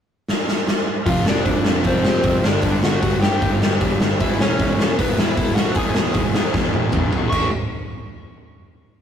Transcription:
0.28 snare medium
0.48 snare medium
0.67 snare medium
1.05 1.22 F1 medium
1.05 1.24 F2 medium
1.05 1.25 C3 medium
1.05 1.25 F3 medium
1.05 1.25 F4 medium
1.05 1.28 F5 medium
1.05 kick loud
1.05 open hi-hat medium
1.26 1.43 F1 medium
1.26 1.43 F2 medium
1.26 1.44 C3 medium
1.26 1.43 F3 medium
1.26 1.81 D4 medium
1.26 1.89 D5 medium
1.26 snare loud
1.44 1.61 F1 medium
1.44 1.63 F2 medium
1.44 1.63 C3 medium
1.44 1.63 F3 medium
1.44 kick loud
1.44 open hi-hat medium
1.64 1.82 F1 medium
1.64 1.82 F2 medium
1.64 1.83 C3 medium
1.64 1.84 F3 medium
1.64 snare loud
1.84 2.16 F1 medium
1.84 2.03 F2 medium
1.84 2.03 C3 medium
1.84 2.03 F3 loud
1.84 2.04 C4 medium
1.84 2.07 C5 medium
1.84 kick loud
1.84 open hi-hat medium
2.04 2.21 F2 medium
2.04 2.22 C3 medium
2.04 2.22 F3 medium
2.04 2.43 C4 medium
2.04 snare loud
2.09 2.48 C5 medium
2.22 2.40 F1 medium
2.22 2.42 F2 medium
2.22 2.42 C3 loud
2.22 2.42 F3 medium
2.22 kick loud
2.22 open hi-hat medium
2.44 2.60 G1 medium
2.44 2.62 G2 medium
2.44 2.62 D3 medium
2.44 2.63 G3 medium
2.44 2.82 D4 medium
2.44 2.84 D5 medium
2.44 snare loud
2.62 2.79 G1 medium
2.62 2.81 G2 loud
2.62 2.82 D3 medium
2.62 2.83 G3 medium
2.62 kick loud
2.62 open hi-hat medium
2.83 2.99 G1 medium
2.83 3.02 G2 medium
2.83 3.02 D3 medium
2.83 3.02 G3 medium
2.83 3.20 F#4 medium
2.83 3.22 F#5 medium
2.83 snare loud
3.02 3.18 G1 medium
3.02 3.21 G2 medium
3.02 3.22 D3 medium
3.02 3.23 G3 medium
3.02 kick loud
3.02 open hi-hat soft
3.21 3.38 G1 medium
3.21 3.41 G2 medium
3.21 3.42 D3 medium
3.21 3.41 G3 medium
3.21 3.97 G4 medium
3.21 3.97 G5 medium
3.21 snare loud
3.42 3.58 G1 medium
3.42 3.60 G2 loud
3.42 3.60 D3 loud
3.42 3.62 G3 medium
3.42 kick loud
3.42 open hi-hat medium
3.61 3.77 G1 medium
3.61 3.80 G2 medium
3.61 3.81 D3 medium
3.61 3.81 G3 medium
3.61 snare loud
3.81 3.97 E1 medium
3.81 4.01 G2 medium
3.81 4.01 D3 medium
3.81 4.01 G3 loud
3.81 kick loud
3.81 open hi-hat soft
4.01 4.17 G1 medium
4.01 4.20 G2 medium
4.01 4.20 D3 medium
4.01 4.21 G3 medium
4.01 snare loud
4.20 4.36 E1 medium
4.20 4.38 E2 medium
4.20 4.38 B2 loud
4.20 4.40 E3 loud
4.20 4.39 E4 medium
4.20 4.40 E5 medium
4.20 kick loud
4.20 open hi-hat medium
4.39 4.56 E1 medium
4.39 4.58 E2 medium
4.39 4.58 B2 medium
4.39 4.60 E3 medium
4.39 4.95 C#4 medium
4.39 4.98 C#5 medium
4.39 snare loud
4.59 4.75 E1 medium
4.59 4.79 E2 medium
4.59 4.78 B2 medium
4.59 4.80 E3 medium
4.59 kick loud
4.59 open hi-hat soft
4.79 4.95 E1 medium
4.79 4.97 E2 medium
4.79 4.97 B2 medium
4.79 4.99 E3 medium
4.79 snare loud
4.98 5.30 E1 medium
4.98 5.17 E2 loud
4.98 5.17 B2 loud
4.98 5.19 E3 loud
4.98 5.17 B3 medium
4.98 5.18 B4 medium
4.98 kick loud
4.98 open hi-hat medium
5.18 5.37 E2 medium
5.18 5.37 B2 medium
5.18 5.38 E3 medium
5.18 5.35 E4 medium
5.18 5.34 E5 medium
5.18 snare loud
5.35 5.53 E1 medium
5.35 5.57 E2 medium
5.35 5.57 B2 medium
5.35 5.59 E3 medium
5.35 5.55 E4 medium
5.35 5.57 E5 medium
5.35 kick loud
5.35 open hi-hat medium
5.55 5.72 B1 medium
5.55 5.76 E2 medium
5.55 5.77 B2 medium
5.55 5.77 E3 medium
5.55 5.75 F#4 medium
5.55 5.75 F#5 loud
5.55 snare loud
5.75 5.92 E1 medium
5.75 5.97 E2 medium
5.75 5.97 B2 medium
5.75 5.98 E3 loud
5.75 7.09 G#4 medium
5.75 7.12 G#5 medium
5.75 kick loud
5.75 open hi-hat medium
5.94 6.11 E1 medium
5.94 6.17 E2 medium
5.94 6.17 B2 medium
5.94 snare loud
5.99 6.17 E3 medium
6.14 6.30 E1 medium
6.14 kick loud
6.14 open hi-hat medium
6.18 6.37 E2 medium
6.18 6.37 B2 medium
6.18 6.37 E3 medium
6.34 6.50 E1 medium
6.34 6.54 E2 medium
6.34 snare loud
6.38 6.54 B2 medium
6.38 6.55 E3 medium
6.54 6.70 E1 medium
6.54 6.75 E2 loud
6.54 6.77 B2 medium
6.54 6.77 E3 loud
6.54 kick loud
6.54 snare medium
6.73 6.90 E1 medium
6.73 6.91 E2 medium
6.73 6.92 B2 medium
6.73 high tom medium
6.77 6.95 E2 medium
6.77 6.95 B2 medium
6.77 6.95 E3 medium
6.92 7.09 D2 medium
6.92 7.14 E2 medium
6.92 7.15 B2 medium
6.92 kick loud
6.92 mid tom medium
6.96 7.15 E3 medium
7.13 7.29 E1 medium
7.13 7.32 E2 medium
7.13 7.32 B2 medium
7.13 7.32 E3 medium
7.13 floor tom medium
7.30 7.51 A1 medium
7.30 7.48 A2 medium
7.30 7.49 E3 loud
7.30 7.49 C#6 medium
7.30 kick medium
7.30 crash medium
7.34 7.49 A3 loud

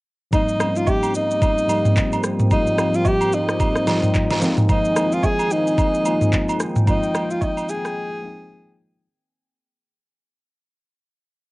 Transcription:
0.31 0.55 G#2 medium
0.31 0.55 F3 medium
0.31 4.38 F3 medium
0.31 0.55 G3 medium
0.31 4.38 G3 medium
0.31 9.02 A#3 medium
0.31 0.56 A#3 medium
0.31 9.02 C4 medium
0.31 0.56 C4 medium
0.31 0.78 D#4 medium
0.31 0.57 D#4 medium
0.31 4.38 G4 medium
0.31 kick loud
0.31 high agogo medium
0.31 shaker medium
0.48 shaker soft
0.58 1.47 G#2 medium
0.58 1.48 F3 medium
0.58 1.48 G3 medium
0.58 1.48 A#3 medium
0.58 1.49 C4 medium
0.58 0.69 C#4 medium
0.58 cross-stick loud
0.58 high agogo medium
0.58 shaker loud
0.69 1.52 D#4 medium
0.76 0.90 F4 medium
0.76 shaker medium
0.87 1.15 G4 loud
0.87 kick medium
0.87 low woodblock medium
0.87 shaker medium
1.03 high agogo medium
1.03 shaker medium
1.15 2.20 D#4 medium
1.15 shaker medium
1.31 shaker medium
1.42 kick loud
1.42 high agogo medium
1.42 shaker medium
1.58 shaker medium
1.67 2.36 G#2 medium
1.67 2.36 F3 medium
1.67 2.36 G3 medium
1.67 2.37 A#3 medium
1.67 2.37 C4 medium
1.67 2.37 D#4 medium
1.67 high agogo medium
1.67 shaker medium
1.85 mid tom medium
1.85 shaker medium
1.96 kick medium
1.96 clap loud
1.96 shaker medium
2.12 high agogo medium
2.12 shaker medium
2.24 cross-stick medium
2.24 shaker medium
2.40 mid tom medium
2.40 shaker medium
2.49 2.73 G#2 medium
2.49 2.73 F3 medium
2.49 2.74 G3 medium
2.49 2.74 A#3 medium
2.49 2.74 C4 medium
2.49 2.97 D#4 loud
2.49 2.75 F4 medium
2.49 kick loud
2.49 high agogo medium
2.49 shaker medium
2.67 shaker soft
2.76 3.66 G#2 medium
2.76 3.66 F3 medium
2.76 3.66 G3 medium
2.76 3.67 A#3 medium
2.76 3.67 C4 medium
2.76 3.67 F4 medium
2.76 cross-stick loud
2.76 high agogo medium
2.76 shaker loud
2.94 3.08 F4 medium
2.94 shaker medium
3.05 3.36 G4 loud
3.05 kick medium
3.05 low woodblock medium
3.05 shaker medium
3.21 high agogo medium
3.21 shaker medium
3.33 4.43 D#4 medium
3.33 shaker medium
3.49 cross-stick loud
3.49 shaker medium
3.60 kick loud
3.60 high agogo medium
3.60 shaker medium
3.75 cross-stick medium
3.75 shaker medium
3.85 4.41 G#2 medium
3.85 4.39 F3 medium
3.85 4.42 G3 medium
3.85 4.41 A#3 medium
3.85 4.42 C4 medium
3.85 4.43 F4 medium
3.85 snare medium
3.85 high agogo medium
3.85 shaker medium
4.03 mid tom medium
4.03 shaker medium
4.15 kick medium
4.15 clap loud
4.15 shaker medium
4.31 snare medium
4.31 high agogo medium
4.31 shaker medium
4.40 9.01 D#3 medium
4.40 4.86 F3 medium
4.40 4.87 G#3 medium
4.40 4.87 A#3 medium
4.40 4.88 C4 medium
4.40 4.88 D#4 loud
4.40 6.58 G#4 medium
4.40 snare medium
4.40 shaker medium
4.58 mid tom medium
4.58 shaker soft
4.69 5.15 D#4 loud
4.69 kick loud
4.69 high agogo medium
4.69 shaker medium
4.85 shaker soft
4.94 5.84 F3 medium
4.94 5.84 G#3 medium
4.94 5.85 A#3 medium
4.94 5.85 C4 medium
4.94 5.05 E4 medium
4.94 cross-stick loud
4.94 high agogo medium
4.94 shaker loud
5.05 5.89 F4 medium
5.12 5.26 F4 medium
5.12 shaker medium
5.23 5.54 G#4 loud
5.23 kick medium
5.23 low woodblock medium
5.23 shaker medium
5.39 high agogo medium
5.39 shaker medium
5.51 6.61 D#4 medium
5.51 shaker medium
5.67 shaker medium
5.78 kick loud
5.78 high agogo medium
5.78 shaker medium
5.94 shaker medium
6.04 6.72 F3 medium
6.04 6.72 G#3 medium
6.04 6.73 A#3 medium
6.04 6.73 C4 medium
6.04 6.74 F4 medium
6.04 high agogo medium
6.04 shaker medium
6.21 mid tom medium
6.21 shaker medium
6.33 kick medium
6.33 clap loud
6.33 shaker medium
6.49 high agogo medium
6.49 shaker medium
6.60 9.03 G5 medium
6.60 cross-stick medium
6.60 shaker medium
6.76 mid tom medium
6.76 shaker medium
6.85 7.09 F3 medium
6.85 7.10 G#3 medium
6.85 7.10 A#3 medium
6.85 7.10 C4 medium
6.85 7.33 D#4 loud
6.85 7.11 F4 medium
6.85 kick loud
6.85 high agogo medium
6.85 shaker medium
7.03 shaker soft
7.13 8.02 F3 medium
7.13 8.02 G#3 medium
7.13 8.03 A#3 medium
7.13 8.03 C4 medium
7.13 7.23 D#4 medium
7.13 cross-stick loud
7.13 high agogo medium
7.13 shaker loud
7.23 8.07 F4 medium
7.30 7.44 F4 medium
7.30 shaker medium
7.41 7.71 D#4 medium
7.41 kick medium
7.41 low woodblock medium
7.41 shaker medium
7.57 high agogo medium
7.57 shaker medium
7.69 8.79 G#4 loud
7.69 shaker medium
7.85 cross-stick loud
7.85 shaker medium
8.22 8.90 F3 medium
8.22 8.90 G#3 medium
8.22 8.91 A#3 medium
8.22 8.91 C4 medium
8.22 8.92 D#4 medium

